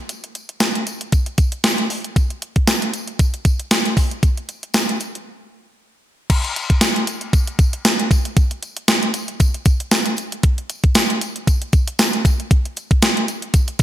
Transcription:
0.09 closed hi-hat, tambourine
0.24 closed hi-hat
0.35 closed hi-hat, tambourine
0.49 closed hi-hat
0.60 snare, closed hi-hat, tambourine
0.75 closed hi-hat
0.87 closed hi-hat, tambourine
1.01 closed hi-hat
1.12 kick, closed hi-hat, tambourine
1.26 closed hi-hat
1.38 kick, closed hi-hat, tambourine
1.52 closed hi-hat
1.64 snare, closed hi-hat, tambourine
1.78 closed hi-hat
1.90 open hi-hat, tambourine
2.04 closed hi-hat
2.16 kick, closed hi-hat, tambourine
2.30 closed hi-hat
2.42 closed hi-hat
2.56 kick, closed hi-hat
2.67 snare, closed hi-hat, tambourine
2.82 closed hi-hat
2.93 closed hi-hat, tambourine
3.07 closed hi-hat
3.19 kick, closed hi-hat, tambourine
3.34 closed hi-hat
3.45 kick, closed hi-hat, tambourine
3.60 closed hi-hat
3.71 snare, closed hi-hat, tambourine
3.85 closed hi-hat
3.97 kick, open hi-hat, tambourine
4.11 closed hi-hat
4.23 kick, closed hi-hat, tambourine
4.37 closed hi-hat
4.49 closed hi-hat, tambourine
4.63 closed hi-hat
4.74 snare, closed hi-hat, tambourine
4.89 closed hi-hat
5.00 closed hi-hat, tambourine
5.15 closed hi-hat
6.30 kick, closed hi-hat, crash, tambourine
6.45 closed hi-hat
6.56 closed hi-hat, tambourine
6.70 kick, closed hi-hat
6.81 snare, closed hi-hat, tambourine
6.96 closed hi-hat
7.07 closed hi-hat, tambourine
7.21 closed hi-hat
7.33 kick, closed hi-hat, tambourine
7.47 closed hi-hat
7.59 kick, closed hi-hat, tambourine
7.73 closed hi-hat
7.85 snare, closed hi-hat, tambourine
7.99 closed hi-hat
8.11 kick, closed hi-hat, tambourine
8.25 closed hi-hat
8.37 kick, closed hi-hat, tambourine
8.51 closed hi-hat
8.63 closed hi-hat, tambourine
8.77 closed hi-hat
8.88 snare, closed hi-hat, tambourine
9.03 closed hi-hat
9.14 closed hi-hat, tambourine
9.28 closed hi-hat
9.40 kick, closed hi-hat, tambourine
9.54 closed hi-hat
9.65 kick, closed hi-hat, tambourine
9.80 closed hi-hat
9.91 snare, closed hi-hat, tambourine
10.06 closed hi-hat
10.17 closed hi-hat, tambourine
10.32 closed hi-hat
10.43 kick, closed hi-hat
10.58 closed hi-hat
10.70 closed hi-hat, tambourine
10.84 kick, closed hi-hat
10.95 snare, closed hi-hat, tambourine
11.10 closed hi-hat
11.21 closed hi-hat, tambourine
11.36 closed hi-hat
11.47 kick, closed hi-hat, tambourine
11.62 closed hi-hat
11.73 kick, closed hi-hat, tambourine
11.88 closed hi-hat
11.99 snare, closed hi-hat, tambourine
12.13 closed hi-hat
12.25 kick, closed hi-hat, tambourine
12.40 closed hi-hat
12.51 kick, closed hi-hat
12.65 closed hi-hat
12.76 closed hi-hat, tambourine
12.91 kick, closed hi-hat
13.02 snare, closed hi-hat, tambourine
13.17 closed hi-hat
13.28 closed hi-hat, tambourine
13.42 closed hi-hat
13.54 kick, closed hi-hat, tambourine
13.68 closed hi-hat
13.79 kick, closed hi-hat, tambourine

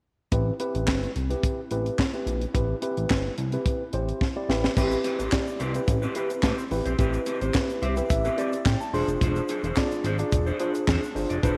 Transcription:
0.32 A1 C4 E4 G4 B4, kick, closed hi-hat
0.60 C4 E4 G4 B4, closed hi-hat
0.75 A1, closed hi-hat
0.88 G1, kick, snare, clap
1.03 closed hi-hat
1.16 C2, closed hi-hat
1.30 C4 E4 G4 B4, closed hi-hat
1.43 kick, closed hi-hat
1.71 A1 C4 E4 G4 B4, closed hi-hat
1.86 closed hi-hat
1.99 kick, snare, clap
2.14 C4 E4 G4 B4, closed hi-hat
2.26 A#1, closed hi-hat
2.41 closed hi-hat
2.54 A1 C4 E4 G4 B4, kick, closed hi-hat
2.82 C4 E4 G4 B4, closed hi-hat
2.97 A1, closed hi-hat
3.10 G1, kick, snare, clap
3.38 C2, closed hi-hat
3.52 C4 E4 G4 B4, closed hi-hat
3.66 kick, closed hi-hat
3.93 A1 C4 E4 G4 C5, closed hi-hat
4.09 closed hi-hat
4.21 kick, snare
4.36 C4 E4 G4 D5
4.49 A1 C4 E4 G4 B4, snare
4.64 snare
4.77 A1 C4 E4 G4 B4, kick, crash, shaker
4.91 closed hi-hat, shaker
5.04 C4 G4 B4, closed hi-hat, shaker
5.19 A1 C4 G4 B4, closed hi-hat, shaker
5.31 C4 E4 G4 D5, kick, snare, clap, shaker
5.46 muted clean electric guitar stroke, shaker
5.59 C2 C4 G4 B4, closed hi-hat, shaker
5.74 C4 E4 G4 B4, muted clean electric guitar stroke, closed hi-hat, shaker
5.87 A1, muted clean electric guitar stroke, kick, closed hi-hat, shaker
6.02 C4 G4 B4, shaker
6.15 C4 E4 G4 B4, closed hi-hat, shaker
6.30 muted clean electric guitar stroke, closed hi-hat, shaker
6.43 A2 C4 G4 B4, kick, snare, clap, shaker
6.58 muted clean electric guitar stroke, shaker
6.71 A1 C4 E4 G4 B4, muted clean electric guitar stroke, open hi-hat, shaker
6.85 A#1 C4 G4 C5, closed hi-hat, shaker
6.98 A1 C4 E4 G4 B4, kick, closed hi-hat, shaker
7.13 closed hi-hat, shaker
7.26 C4 G4 B4, closed hi-hat, shaker
7.41 A1 C4 G4 C5, closed hi-hat, shaker
7.53 C4 E4 G4 B4, kick, snare, clap, shaker
7.69 muted clean electric guitar stroke, closed hi-hat, shaker
7.82 C2 C4 G4 C5 E5, closed hi-hat, shaker
7.96 C4 E4 G4 B4, muted clean electric guitar stroke, closed hi-hat, shaker
8.10 A1 E5, muted clean electric guitar stroke, kick, closed hi-hat, shaker
8.24 C4 G4 B4, closed hi-hat, shaker
8.37 C4 E4 G4 B4 D5, closed hi-hat, shaker
8.53 muted clean electric guitar stroke, closed hi-hat, shaker
8.66 A2 G5, kick, snare, clap, shaker
8.81 A5, muted clean electric guitar stroke, shaker
8.93 E1 D4 F4 G#4 C5 C6, open hi-hat, shaker
9.08 F1, muted clean electric guitar stroke, closed hi-hat, shaker
9.21 E1 D4 G#4 C5, kick, closed hi-hat, shaker
9.36 closed hi-hat, shaker
9.48 D4 G#4 C5, closed hi-hat, shaker
9.63 E1 D4 G#4 C5, closed hi-hat, shaker
9.76 D4 F4 G#4 D5, kick, snare, clap, shaker
9.91 muted clean electric guitar stroke, closed hi-hat, shaker
10.04 G#1 D4 G#4 C5, closed hi-hat, shaker
10.18 D4 F4 G#4 D5, muted clean electric guitar stroke, closed hi-hat, shaker
10.32 E1, muted clean electric guitar stroke, kick, closed hi-hat, shaker
10.46 D4 G#4 C5, shaker
10.59 D4 F4 G#4 C5, closed hi-hat, shaker
10.74 muted clean electric guitar stroke, closed hi-hat, shaker
10.87 E2 D4 G#4 C5, kick, snare, clap, shaker
11.02 muted clean electric guitar stroke, shaker
11.15 G1 D4 F4 G#4 C5, muted clean electric guitar stroke, open hi-hat, shaker
11.30 F1 D4 G#4 D5, closed hi-hat, shaker
11.43 E1 D4 F4 G#4 B4 C5, kick, closed hi-hat, shaker

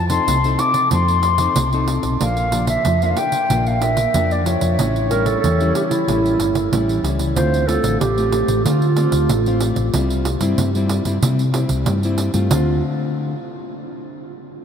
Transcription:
Already playing: F2 F3
0.09 C4 D#4 A4 C6, pandeiro
0.27 C2 C3, pandeiro
0.44 C4 D#4 A4, pandeiro
0.59 D6, pandeiro
0.74 pandeiro
0.91 F2 F3 C4 D#4 A4 C6, pandeiro
1.08 pandeiro
1.23 pandeiro
1.38 C4 D#4 A4, pandeiro
1.56 C2 C3, pandeiro
1.73 C4 D#4 A4, pandeiro
1.88 pandeiro
2.03 B1, pandeiro
2.21 A#1 A#2 F3 A#3 D4 F5, pandeiro
2.37 pandeiro
2.52 F3 A#3 D4, pandeiro
2.67 E5, pandeiro
2.85 F2 F3, pandeiro
3.02 F3 A#3 D4 E5 F5, pandeiro
3.10 F5
3.17 G5, pandeiro
3.32 pandeiro
3.50 A#1 A#2 F3 A#3 D4, pandeiro
3.66 F5, pandeiro
3.82 F3 A#3 D4 E5, pandeiro
3.97 pandeiro
4.14 F2 F3 A#3 D4, pandeiro
4.31 D5, pandeiro
4.46 F3 A#3 D4 C#5, pandeiro
4.61 F2, pandeiro
4.79 A1 A2 G3 C#4 E4, pandeiro
4.96 pandeiro
5.11 G3 C#4 E4 A#4, pandeiro
5.26 A4, pandeiro
5.41 E2 E3 A4, pandeiro
5.61 G3 C#4 E4, pandeiro
5.75 G4, pandeiro
5.90 E4, pandeiro
6.08 A1 A2 G3 C#4 E4, pandeiro
6.26 pandeiro
6.39 G1, pandeiro
6.55 pandeiro
6.72 A1 E3 G3 C#4 E4, pandeiro
6.89 pandeiro
7.03 C#2 G3 C#4 E4, pandeiro
7.19 pandeiro
7.36 D2 D3 A3 C4 F4 C5, pandeiro
7.54 pandeiro
7.68 A3 C4 F4 A4, pandeiro
7.84 A1, pandeiro
8.00 A1 G4, pandeiro
8.18 A3 C4 F4, pandeiro
8.32 pandeiro
8.48 A1, pandeiro
8.65 D3 A3 C4 F4, pandeiro
8.82 pandeiro
8.96 A3 C4 F4, pandeiro
9.12 D2, pandeiro
9.29 A1 A2, pandeiro
9.46 A3 C4 F4, pandeiro
9.61 pandeiro
9.76 A1, pandeiro
9.94 C2 C3 G3 C4 E4, pandeiro
10.10 pandeiro
10.25 pandeiro
10.41 G2 G3 C4 E4, pandeiro
10.58 G2 G3, pandeiro
10.75 G3 C4 E4, pandeiro
10.89 pandeiro
11.05 G2 G3 C4 E4, pandeiro
11.23 C3 G3 C4 E4, pandeiro
11.39 pandeiro
11.54 G3 C4 E4, pandeiro
11.69 C2, pandeiro
11.86 G2 G3, pandeiro
12.03 G3 C4 E4, pandeiro
12.18 pandeiro
12.34 G2 A3 C4 F4, pandeiro
12.51 D2 D3 A3 C4 F4, pandeiro

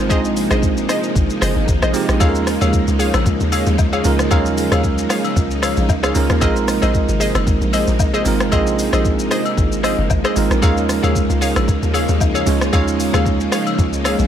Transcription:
Already playing: G#1 C3 F3 G#3 A#3 C4 D#4 F4 A#4 C5
0.09 A#1 G#3 C4 D4 F4 G#4 C5 D#5, kick, shaker
0.17 D#4
0.25 shaker
0.37 open hi-hat, shaker
0.50 A#1 G#4 C5 D#5, cross-stick, shaker
0.63 kick, shaker
0.77 shaker
0.89 G#4 C5 D#5, cross-stick, open hi-hat, shaker
1.03 shaker
1.15 G#1, kick, shaker
1.30 shaker
1.41 F#1 G#4 C5 D#5, cross-stick, open hi-hat, shaker
1.56 G#1
1.68 G#1, kick, shaker
1.82 A#1 G#4 C5 D#5, cross-stick, shaker
1.93 G#3 C4 D#4 F4 G4, open hi-hat, shaker
2.09 A#1, cross-stick, shaker
2.20 D#2 C#3 G#3 C#4 D#4 F4 G#4 A4 C#5 F5, kick, high agogo, shaker
2.29 A#4
2.35 shaker
2.47 cross-stick, open hi-hat, shaker
2.61 D#2 G#4 C#5 F5, high agogo, shaker
2.73 kick, shaker
2.88 C#2, shaker
2.99 G#4 C#5 F5, open hi-hat, shaker
3.14 A#1, cross-stick, high agogo, shaker
3.26 C#2, kick, shaker
3.40 D#2, shaker
3.52 G#4 C#5 F5, open hi-hat, high agogo, shaker
3.66 D#2, shaker
3.78 kick, low woodblock, shaker
3.93 G#4 C#5 F5, high agogo, shaker
4.04 C#2 G#3 C#4 D#4 F4 A#4, open hi-hat, shaker
4.19 cross-stick, shaker
4.30 D#2 F#3 C#4 D#4 F4 G#4 A#4 C#5 F5, kick, high agogo, shaker
4.37 G#3
4.46 shaker
4.58 open hi-hat, shaker
4.71 D#2 G#4 C#5 F5, cross-stick, high agogo, shaker
4.84 kick, shaker
4.98 shaker
5.09 G#4 C#5 F5, cross-stick, open hi-hat, shaker
5.25 high agogo, shaker
5.36 C#2, kick, shaker
5.51 shaker
5.62 G#4 C#5 F5, cross-stick, open hi-hat, high agogo, shaker
5.77 A#1, shaker
5.89 C#2, kick, low woodblock, shaker
6.03 G#4 C#5 F5, cross-stick, high agogo, shaker
6.14 C#2 G#3 C#4 D#4 F4 A#4, open hi-hat, shaker
6.30 D#2, cross-stick, shaker
6.41 A#1 C3 F3 G#3 A#3 C4 D#4 F4 G#4 A#4 C5 D#5, kick, high agogo, shaker
6.56 shaker
6.68 cross-stick, open hi-hat, shaker
6.82 A#1 G#4 C5 D#5, high agogo, shaker
6.94 kick, shaker
7.09 G#1, shaker
7.20 G#4 C5 D#5, open hi-hat, shaker
7.35 F#1, cross-stick, high agogo, shaker
7.47 G#1, kick, shaker
7.61 A#1, shaker
7.73 G#4 C5 D#5, open hi-hat, high agogo, shaker
7.87 A#1, shaker
7.99 kick, low woodblock, shaker
8.13 G#4 C5 D#5, high agogo, shaker
8.25 G#1 G#3 C4 D#4 F4 A#4, open hi-hat, shaker
8.40 cross-stick, shaker
8.51 A#1 G#3 C4 D4 F4 G#4 C5 D#5, kick, high agogo, shaker
8.59 D#4
8.67 shaker
8.79 open hi-hat, shaker
8.93 A#1 G#4 C5 D#5, cross-stick, high agogo, shaker
9.05 kick, shaker
9.19 shaker
9.31 G#4 C5 D#5, cross-stick, open hi-hat, shaker
9.45 high agogo, shaker
9.57 G#1, kick, shaker
9.72 shaker
9.83 G#4 C5 D#5, cross-stick, open hi-hat, high agogo, shaker
9.98 F#1
10.10 G#1, kick, low woodblock, shaker
10.24 G#4 C5 D#5, cross-stick, high agogo, shaker
10.35 G#1 G#3 C4 D#4 F4 A#4, open hi-hat, shaker
10.50 A#1, cross-stick, shaker
10.62 D#2 C#3 G#3 C#4 D#4 F4 G#4 A#4 C#5 F5, kick, high agogo, shaker
10.77 shaker
10.89 cross-stick, open hi-hat, shaker
11.03 D#2 G#4 C#5 F5, high agogo, shaker
11.15 kick, shaker
11.30 C#2, shaker
11.41 G#4 C#5 F5, open hi-hat, shaker
11.56 A#1, cross-stick, high agogo, shaker
11.68 C#2, kick, shaker
11.83 D#2, shaker
11.94 G#4 C#5 F5, open hi-hat, high agogo, shaker
12.09 D#2, shaker
12.20 kick, low woodblock, shaker
12.35 G#4 C#5 F5, high agogo, shaker
12.46 C#2 G#3 C#4 D#4 F4 C#5, open hi-hat, shaker
12.61 cross-stick, shaker
12.72 D#2 G#3 C#4 D#4 F4 G#4 C#5 F5, kick, high agogo, shaker
12.88 shaker
13.00 open hi-hat, shaker
13.13 D#2 G#4 C#5 F5, cross-stick, high agogo, shaker
13.26 kick, shaker
13.40 shaker
13.52 G#4 C#5 F5, cross-stick, open hi-hat, shaker
13.67 high agogo, shaker
13.79 C#2, kick, shaker
13.93 shaker
14.04 G#4 C#5 F5, cross-stick, open hi-hat, high agogo, shaker
14.19 A#1, shaker

